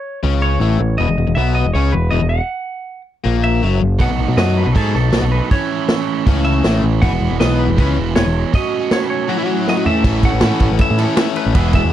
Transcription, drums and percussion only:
4.00 kick, open hi-hat
4.38 snare, open hi-hat
4.47 snare
4.76 kick, open hi-hat
4.95 snare
5.12 snare, open hi-hat
5.51 kick, open hi-hat
5.88 snare, open hi-hat
6.26 kick, open hi-hat
6.64 snare, open hi-hat
7.03 kick, open hi-hat
7.40 snare, open hi-hat
7.50 snare
7.78 kick, open hi-hat
8.16 snare, open hi-hat
8.54 kick, open hi-hat
8.91 snare, open hi-hat
9.01 snare
9.67 snare
9.86 floor tom
10.04 kick, crash
10.23 kick, ride
10.41 snare, ride
10.60 kick, ride
10.79 kick, ride
10.98 snare, ride
11.17 snare, ride
11.36 ride
11.55 kick, ride
11.73 kick, ride

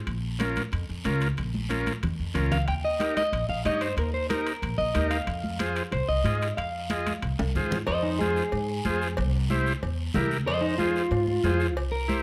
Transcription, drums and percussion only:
0.07 high conga, high timbale, long guiro
0.40 high conga, high timbale, short guiro
0.56 high conga, high timbale, short guiro
0.72 high conga, high timbale, long guiro
1.05 high conga, high timbale, short guiro
1.21 high timbale, short guiro
1.37 high conga, high timbale, long guiro
1.54 high conga
1.70 high conga, high timbale, short guiro
1.86 high conga, high timbale, short guiro
2.03 low conga, high timbale, long guiro
2.35 low conga, high timbale, short guiro
2.52 low conga, high timbale, short guiro
2.68 high conga, high timbale, long guiro
3.00 high conga, high timbale, short guiro
3.17 high conga, high timbale, short guiro
3.33 high conga, high timbale, long guiro
3.65 high conga, high timbale, short guiro
3.81 high timbale, short guiro
3.98 high conga, high timbale, long guiro
4.30 high conga, high timbale, short guiro
4.47 high timbale, short guiro
4.63 high conga, high timbale, long guiro
4.95 high conga, high timbale, short guiro
5.11 high timbale, short guiro
5.27 high conga, high timbale, long guiro
5.44 high conga
5.59 high conga, high timbale, short guiro
5.76 high timbale, short guiro
5.92 high conga, high timbale, long guiro
6.25 high conga, high timbale, short guiro
6.42 high timbale, short guiro
6.58 high conga, high timbale, long guiro
6.90 high conga, high timbale, short guiro
7.07 high conga, high timbale, short guiro
7.22 high timbale, long guiro
7.39 high conga, high timbale
7.55 low conga, short guiro
7.71 low conga, low timbale, short guiro
7.87 cowbell, long guiro
8.21 high conga, short guiro
8.36 short guiro
8.52 cowbell, long guiro
8.85 high conga, short guiro
9.02 short guiro
9.17 cowbell, long guiro
9.50 high conga, short guiro
9.66 short guiro
9.83 cowbell, long guiro
10.14 high conga, low conga, low timbale, short guiro
10.31 short guiro
10.48 cowbell, long guiro
10.79 high conga, short guiro
10.96 short guiro
11.12 cowbell, long guiro
11.27 high conga
11.44 high conga, low timbale, short guiro
11.60 short guiro
11.77 cowbell, long guiro
12.09 high conga, short guiro

